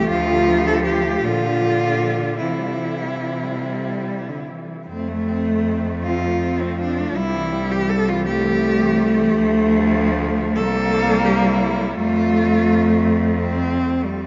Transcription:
0.00 0.10 E3 medium
0.09 1.21 D2 loud
0.09 0.30 F3 medium
0.09 1.25 F3 loud
0.09 0.69 F4 loud
0.28 0.49 D3 medium
0.47 0.67 F3 medium
0.66 0.83 D3 medium
0.66 0.84 A4 loud
0.84 1.04 F3 medium
0.84 1.25 G4 loud
1.03 1.20 D3 medium
1.21 2.42 A#2 medium
1.21 2.40 D3 medium
1.21 1.42 F3 medium
1.21 2.38 F4 loud
1.41 1.60 D3 medium
1.58 1.81 F3 medium
1.79 1.99 D3 medium
2.00 2.19 F3 medium
2.17 2.38 D3 medium
2.39 4.68 C3 medium
2.39 2.61 E3 medium
2.39 4.23 E3 medium
2.39 4.43 E4 medium
2.60 2.80 G3 medium
2.79 3.02 E3 soft
3.01 3.21 G3 soft
3.22 3.44 E3 medium
3.43 3.62 G3 soft
3.62 4.30 G3 medium
4.29 4.50 D3 medium
4.48 4.88 E3 medium
4.88 7.12 F2 medium
4.88 6.02 A3 medium
4.88 5.09 C4 medium
5.08 5.30 A3 medium
5.28 5.49 C4 medium
5.48 5.66 A3 medium
5.67 5.88 C4 medium
5.86 6.08 A3 medium
6.03 7.18 F3 medium
6.03 6.27 C4 medium
6.03 6.63 F4 loud
6.26 6.43 A3 medium
6.44 6.65 C4 medium
6.61 6.82 A3 medium
6.61 6.79 C4 medium
6.80 7.01 C4 medium
6.80 7.18 D4 medium
6.99 7.17 A3 medium
7.16 9.32 C2 medium
7.16 8.26 G3 medium
7.16 7.36 G3 medium
7.16 7.73 E4 loud
7.34 7.53 E3 medium
7.52 7.72 G3 medium
7.71 7.89 E3 medium
7.71 7.91 G4 loud
7.89 8.09 G3 medium
7.89 8.10 A4 loud
8.08 8.27 E3 medium
8.08 8.25 F4 loud
8.25 8.44 G3 medium
8.25 10.60 A3 loud
8.25 9.34 G4 loud
8.43 8.61 E3 medium
8.62 8.82 G3 medium
8.80 8.99 E3 medium
8.98 9.18 G3 medium
9.17 9.36 E3 medium
9.36 10.60 D2 medium
9.36 10.59 F3 medium
10.56 11.97 C2 medium
10.56 11.99 G3 loud
10.56 11.94 A#3 loud
10.56 11.26 A4 loud
11.25 11.49 G4 loud
11.47 11.96 E4 loud
11.93 14.27 F2 medium
11.93 13.26 A3 medium
11.93 13.36 F4 loud
11.97 14.06 A3 medium
13.36 14.06 C4 loud
14.04 14.27 G3 medium

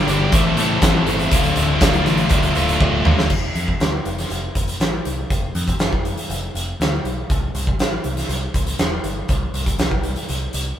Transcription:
0.00 0.31 G2 medium
0.00 0.31 D3 loud
0.00 0.32 D3 medium
0.00 0.10 G3 medium
0.00 0.32 G3 medium
0.00 0.29 A4 medium
0.00 0.32 D5 medium
0.00 0.32 G5 medium
0.00 0.32 D6 medium
0.08 0.27 G1 loud
0.08 0.33 D4 medium
0.08 0.31 G4 medium
0.08 snare soft
0.08 closed hi-hat medium
0.12 0.33 G3 medium
0.32 0.52 A1 medium
0.32 0.80 A2 loud
0.32 0.81 E3 loud
0.32 0.60 A3 loud
0.32 0.59 C4 loud
0.32 0.58 E4 loud
0.32 3.28 A4 medium
0.32 1.32 C5 medium
0.32 1.32 E5 medium
0.32 1.32 B5 medium
0.32 kick loud
0.32 closed hi-hat loud
0.36 0.56 A4 loud
0.57 0.77 A2 medium
0.57 0.83 A3 medium
0.57 0.82 C4 medium
0.57 0.83 E4 medium
0.57 0.85 A4 medium
0.57 closed hi-hat medium
0.81 1.02 A1 loud
0.81 1.30 A2 loud
0.81 1.31 E3 loud
0.81 1.33 A3 loud
0.81 1.31 C4 loud
0.81 1.32 E4 loud
0.81 1.35 A4 loud
0.81 kick loud
0.81 snare loud
0.81 closed hi-hat loud
1.07 1.27 G1 medium
1.07 1.32 A3 medium
1.07 1.32 C4 medium
1.07 1.31 E4 medium
1.07 1.34 A4 medium
1.07 closed hi-hat medium
1.19 closed hi-hat medium
1.31 1.51 D1 loud
1.31 1.82 D2 loud
1.31 1.80 A2 loud
1.31 1.58 D3 loud
1.31 1.56 A3 loud
1.31 1.55 F4 loud
1.31 3.29 D5 medium
1.31 3.29 F5 medium
1.31 3.29 D6 medium
1.31 kick loud
1.31 closed hi-hat loud
1.44 closed hi-hat medium
1.56 1.76 D1 medium
1.56 1.81 D3 medium
1.56 1.83 A3 medium
1.56 1.83 F4 medium
1.56 closed hi-hat medium
1.80 2.01 D1 medium
1.80 2.31 D2 loud
1.80 2.31 A2 medium
1.80 2.08 D3 medium
1.80 2.06 A3 medium
1.80 kick loud
1.80 snare loud
1.80 closed hi-hat loud
1.85 2.04 F4 medium
1.93 closed hi-hat medium
2.06 2.26 A1 medium
2.06 2.58 D3 medium
2.06 2.56 A3 medium
2.06 2.54 F4 medium
2.06 snare soft
2.06 closed hi-hat medium
2.17 closed hi-hat soft
2.29 2.50 D1 loud
2.29 2.80 A2 medium
2.29 2.57 D3 medium
2.29 2.56 A3 medium
2.29 2.54 F4 medium
2.29 kick loud
2.29 closed hi-hat medium
2.43 closed hi-hat soft
2.55 2.76 D1 medium
2.55 2.80 D3 medium
2.55 2.82 A3 medium
2.55 2.82 F4 medium
2.55 closed hi-hat medium
2.68 closed hi-hat soft
2.80 3.00 D1 medium
2.80 3.29 D2 loud
2.80 3.29 A2 loud
2.80 3.30 D3 loud
2.80 3.30 A3 loud
2.80 3.31 F4 loud
2.80 kick loud
3.04 3.25 E1 medium
3.04 3.30 A2 medium
3.04 3.29 D3 loud
3.04 3.30 D3 medium
3.04 3.30 A3 medium
3.04 3.29 F4 medium
3.04 mid tom loud
3.08 3.31 D2 medium
3.19 snare medium
3.30 3.48 F1 medium
3.30 kick loud
3.30 crash loud
3.55 3.73 F2 medium
3.55 closed hi-hat medium
3.68 kick medium
3.80 3.98 D2 medium
3.80 snare loud
3.80 closed hi-hat medium
4.05 4.23 F1 medium
4.05 closed hi-hat medium
4.18 snare soft
4.18 closed hi-hat medium
4.30 4.48 F1 medium
4.30 closed hi-hat medium
4.55 4.73 F1 medium
4.55 kick medium
4.55 closed hi-hat medium
4.68 closed hi-hat medium
4.80 4.98 A1 medium
4.80 snare loud
4.80 closed hi-hat medium
5.05 5.23 C2 medium
5.05 closed hi-hat medium
5.30 5.48 F1 medium
5.30 kick loud
5.30 closed hi-hat medium
5.55 5.73 F2 medium
5.55 closed hi-hat medium
5.67 kick medium
5.67 closed hi-hat medium
5.79 6.16 F1 medium
5.79 snare loud
5.79 closed hi-hat medium
5.93 kick medium
6.05 closed hi-hat medium
6.17 closed hi-hat medium
6.30 6.47 F1 medium
6.30 closed hi-hat medium
6.55 6.72 F1 medium
6.55 closed hi-hat medium
6.80 6.97 D2 medium
6.80 snare loud
6.80 closed hi-hat medium
7.04 7.22 B1 medium
7.04 closed hi-hat medium
7.30 7.47 C2 medium
7.30 kick loud
7.30 closed hi-hat medium
7.55 7.72 C2 medium
7.55 closed hi-hat medium
7.67 kick medium
7.79 7.97 A1 medium
7.79 snare loud
7.79 closed hi-hat medium
8.04 8.22 C2 medium
8.04 closed hi-hat medium
8.17 snare soft
8.17 closed hi-hat medium
8.29 8.46 C2 medium
8.29 closed hi-hat medium
8.54 8.72 C2 medium
8.54 kick medium
8.54 closed hi-hat medium
8.67 closed hi-hat medium
8.78 8.97 E1 medium
8.78 snare loud
8.78 closed hi-hat medium
9.04 9.21 G1 medium
9.04 closed hi-hat medium
9.29 9.47 C2 medium
9.29 kick loud
9.29 closed hi-hat medium
9.54 9.71 C2 medium
9.54 closed hi-hat medium
9.66 kick medium
9.66 closed hi-hat medium
9.78 10.13 C2 medium
9.78 snare loud
9.78 closed hi-hat medium
9.91 kick medium
10.03 closed hi-hat medium
10.16 closed hi-hat medium
10.29 10.47 C2 medium
10.29 closed hi-hat medium
10.53 10.71 C2 medium
10.53 closed hi-hat medium

